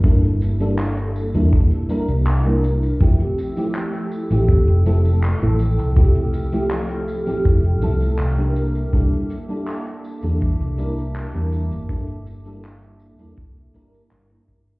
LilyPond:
<<
  \new Staff \with { instrumentName = "Ambient pad" } { \time 4/4 \key f \major \tempo 4 = 81 << { r1 | e'''1 | f'''2.~ f'''8 <e'' d'''>8~ | <e'' d'''>1~ |
<e'' d'''>1 | } \\ { r1 | <a' g''>1~ | <a' g''>2.~ <a' g''>8 <bes a''>8~ | <bes a''>1~ |
<bes a''>1 | } >> }
  \new Staff \with { instrumentName = "FM electric piano" } { \time 4/4 \key f \major <g bes d' e' a'>8. <g bes d' e' a'>4 <g bes d' e' a'>8. <g bes d' e' bes'>8. <g bes d' e' bes'>8. | <f a c' e' g'>8. <f a c' e' g'>4 <f a c' e' g'>8. <f a c' e' a'>8. <f a c' e' a'>8. | <f a c' e' g'>8. <f a c' e' g'>4 <f a c' e' g'>8. <f a c' e' a'>8. <g bes d' e' bes'>8. | <g bes d' e' a'>8. <g bes d' e' a'>4 <g bes d' e' a'>8. <g bes d' e' bes'>8. <g bes d' e' bes'>8. |
<g bes d' e' a'>8. <g bes d' e' a'>4 <g bes d' e' a'>8. <g bes d' e' bes'>8. <g bes d' e' bes'>8. | }
  \new Staff \with { instrumentName = "Fingered electric bass" } { \clef bass \time 4/4 \key f \major g,,4.~ g,,16 e,16 r8. c,4~ c,16 | f,,16 r4. a,,16 r16 f,,4 a,,8 c,16~ | c,4.~ c,16 a,,16 f,,8 c,16 r16 c,4 | c,16 r4. e,16 r16 c,4 e,8 g,,16~ |
g,,4.~ g,,16 e,16 c,8 g,,16 r16 g,,16 r16 g,,16 r16 | }
  \new DrumStaff \with { instrumentName = "Drums" } \drummode { \time 4/4 <hh bd tamb>16 hh16 <hh tamb>16 <hh tamb>16 <hc hh tamb>16 hh16 tamb16 <hh tamb>16 <hh bd tamb>16 hh16 <hh tamb>16 <hh tamb>16 <hc hh tamb>16 hh16 <hh tamb>16 <hh tamb>16 | <hh bd tamb>16 hh16 <hh tamb>16 <hh tamb>16 <hc hh tamb>16 hh16 tamb16 <hh tamb>16 <hh bd tamb>16 hh16 <hh tamb>16 <hh tamb>16 <hc hh>16 hh16 <hh tamb>16 <hh tamb>16 | <hh bd tamb>16 hh16 <hh tamb>16 <hh tamb>16 <hc hh tamb>16 hh16 tamb16 <hh tamb>16 <hh bd tamb>16 hh16 <hh tamb>16 <hh tamb>16 <hc hh tamb>16 hh16 <hh tamb>16 <hh tamb>16 | <hh bd tamb>16 hh16 <hh tamb>16 <hh tamb>16 <hc hh tamb>16 hh16 tamb16 <hh tamb>16 <hh bd tamb>16 hh16 <hh tamb>16 <hh tamb>16 <hc hh tamb>16 hh16 <hh tamb>16 <hh tamb>16 |
<hh bd tamb>16 hh16 <hh tamb>16 <hh tamb>16 <hc hh>16 hh16 <hh tamb>16 <hh tamb>16 <hh bd tamb>16 hh16 <hh tamb>16 <hh tamb>16 <hc hh>8 <hh bd>16 hh16 | }
>>